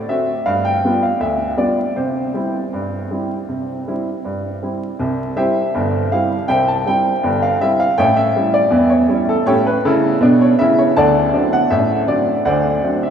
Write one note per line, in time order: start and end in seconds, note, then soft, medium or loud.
0.09 0.30 A3 soft
0.09 0.30 C4 soft
0.09 0.30 F#4 soft
0.09 0.44 E5 medium
0.46 0.78 G2 medium
0.46 0.64 F5 medium
0.65 1.00 G5 medium
0.85 1.05 G3 soft
0.85 1.05 B3 soft
0.85 1.05 F4 medium
1.03 1.21 F5 medium
1.20 1.52 D2 medium
1.20 1.56 E5 medium
1.57 1.78 G3 soft
1.57 1.79 B3 soft
1.57 1.79 F4 soft
1.57 1.94 D5 medium
1.96 2.28 C3 medium
1.96 4.19 C5 medium
2.34 2.55 G3 soft
2.34 2.55 C4 soft
2.34 2.55 E4 soft
2.73 3.05 G2 medium
3.11 3.31 G3 soft
3.11 3.31 C4 soft
3.11 3.32 E4 soft
3.49 3.80 C3 medium
3.88 4.08 G3 soft
3.88 4.08 C4 soft
3.88 4.08 E4 soft
4.25 4.56 G2 medium
4.63 4.83 G3 soft
4.63 4.83 C4 soft
4.63 4.84 E4 soft
4.99 5.31 C2 medium
4.99 5.31 C3 medium
5.36 5.57 G3 soft
5.36 5.57 C4 soft
5.36 5.57 E4 medium
5.36 6.08 G4 medium
5.36 6.08 C5 medium
5.36 5.96 E5 medium
5.74 6.06 G1 medium
5.74 6.06 G2 medium
6.12 6.33 G3 soft
6.12 6.33 C4 soft
6.12 6.33 E4 medium
6.12 6.47 F5 medium
6.48 6.80 C2 medium
6.48 6.80 C3 medium
6.48 6.66 C5 medium
6.48 6.66 E5 medium
6.48 6.67 G5 loud
6.68 6.86 A5 medium
6.86 7.07 G3 medium
6.86 7.08 C4 soft
6.86 7.07 E4 medium
6.86 7.40 G5 medium
7.23 7.55 G1 medium
7.23 7.55 G2 medium
7.42 7.61 F5 medium
7.61 7.82 G3 medium
7.61 7.82 C4 medium
7.61 7.82 E4 medium
7.61 7.80 E5 medium
7.80 7.98 F5 medium
7.98 8.30 A1 medium
7.98 8.30 A2 medium
7.98 8.16 C#5 medium
7.98 8.15 E5 medium
7.98 8.16 G5 loud
8.17 8.52 E5 medium
8.36 8.56 G3 medium
8.36 8.57 C#4 medium
8.36 8.57 E4 medium
8.54 8.89 D5 medium
8.70 9.03 E2 medium
8.70 9.04 E3 medium
8.90 9.20 C#5 medium
9.09 9.30 G3 medium
9.09 9.30 C#4 medium
9.09 9.30 E4 medium
9.29 9.46 A4 medium
9.46 9.77 A2 medium
9.46 9.78 C#4 medium
9.46 9.65 G4 medium
9.46 9.65 A4 medium
9.46 9.66 C#5 loud
9.67 9.85 B4 medium
9.85 10.15 C#3 loud
9.85 10.16 E4 medium
9.85 10.38 A4 medium
10.21 10.51 B2 loud
10.21 10.52 D4 medium
10.41 10.60 C#5 medium
10.59 10.89 C#3 medium
10.59 10.90 E4 medium
10.59 10.78 E5 loud
10.79 10.97 C#5 loud
10.96 11.28 D2 medium
10.96 11.29 D3 medium
10.96 11.49 D5 medium
10.96 11.49 F#5 medium
10.96 11.50 A5 loud
11.33 11.54 F#3 medium
11.33 11.54 C4 medium
11.33 11.55 D4 medium
11.53 11.71 F#5 medium
11.70 12.03 A1 medium
11.70 12.02 A2 medium
11.70 12.01 E5 loud
12.08 12.29 F#3 soft
12.08 12.29 C4 medium
12.08 12.29 D4 medium
12.08 12.38 D5 medium
12.45 12.77 D2 medium
12.45 12.77 D3 medium
12.45 12.98 C5 medium
12.45 12.98 D5 medium
12.45 12.99 F#5 medium
12.83 13.04 F#3 soft
12.83 13.04 C4 medium
12.83 13.04 D4 medium
13.03 13.10 E5 medium